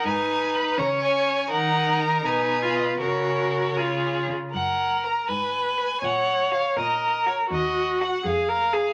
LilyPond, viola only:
\new Staff \with { instrumentName = "Viola" } { \time 6/8 \key fis \major \tempo 4. = 81 dis'4. cis'4. | dis'4. dis'8. eis'8. | fis'4. eis'4 r8 | ais'4. b'4. |
cis''4. ais'4. | fis'4. aes'8 bes'8 aes'8 | }